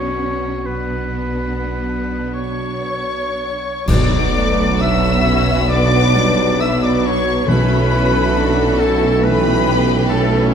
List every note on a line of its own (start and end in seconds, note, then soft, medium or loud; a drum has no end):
0.00 3.67 B1 soft
0.00 0.64 B3 soft
0.00 3.54 B3 soft
0.00 0.64 C#4 medium
0.00 0.65 D4 soft
0.00 3.54 F#4 medium
0.00 0.67 C#5 medium
0.00 0.64 F#5 soft
0.66 3.63 B3 soft
0.66 2.88 B3 soft
0.66 3.63 D4 soft
0.66 2.33 B4 medium
0.66 2.31 F#5 soft
2.34 3.90 C#5 medium
2.34 3.84 C#5 medium
2.34 3.84 C#6 medium
3.86 7.43 B1 medium
3.86 7.43 B2 medium
3.86 5.67 B2 medium
3.86 5.22 B2 loud
3.86 4.31 F#3 medium
3.86 5.67 F#3 medium
3.86 5.66 B3 medium
3.86 4.77 B3 medium
3.86 6.56 F#4 medium
3.86 5.66 B4 medium
3.86 4.79 D5 medium
3.86 4.83 D5 medium
3.86 4.77 D5 medium
3.86 4.79 D6 loud
3.86 concert bass drum medium
3.86 crash medium
4.34 4.80 A3 medium
4.80 5.69 B3 medium
4.80 5.25 D4 medium
4.80 6.60 B4 medium
4.80 5.68 E5 loud
4.80 5.53 E5 medium
4.80 5.70 E6 loud
5.25 5.69 C#4 medium
5.69 7.44 B2 medium
5.69 7.44 F#3 medium
5.69 7.43 B3 medium
5.69 6.14 B3 medium
5.69 6.60 D4 medium
5.69 7.44 B4 medium
5.69 6.59 D5 loud
5.69 6.62 D5 loud
5.69 6.60 D6 loud
6.15 6.60 G3 medium
6.59 7.46 F#3 medium
6.59 7.47 B3 medium
6.59 7.48 D4 medium
6.59 7.46 B4 medium
6.59 6.82 E5 medium
6.59 6.83 E5 medium
6.59 6.82 E6 loud
6.83 7.04 D5 medium
6.83 7.08 D5 medium
6.83 7.05 D6 medium
7.04 7.47 C#5 medium
7.04 7.50 C#5 medium
7.04 7.47 C#6 loud
7.46 10.54 B1 medium
7.46 8.75 B2 medium
7.46 10.54 B2 medium
7.46 10.06 E3 medium
7.46 9.19 F#3 medium
7.46 10.06 A3 medium
7.46 10.05 C#4 medium
7.46 8.33 C#4 medium
7.46 7.90 E4 medium
7.46 10.05 A4 medium
7.46 9.20 A4 medium
7.46 8.54 B4 loud
7.46 8.81 B4 medium
7.46 8.76 B5 loud
7.91 8.34 E4 medium
8.34 8.78 D4 medium
8.34 9.23 F#4 medium
8.79 9.23 E4 medium
8.79 9.22 A4 medium
8.79 9.26 A4 medium
8.79 9.22 A5 medium
9.22 10.10 E3 medium
9.22 9.66 A3 medium
9.22 10.54 G4 medium
9.22 10.11 B4 medium
9.22 9.84 B4 medium
9.22 10.54 B4 medium
9.22 10.10 B5 loud
9.66 10.10 B3 medium
10.09 10.54 E3 medium
10.09 10.54 A3 medium
10.09 10.54 C#4 medium
10.09 10.50 A4 medium
10.09 10.54 A4 medium
10.09 10.53 A5 medium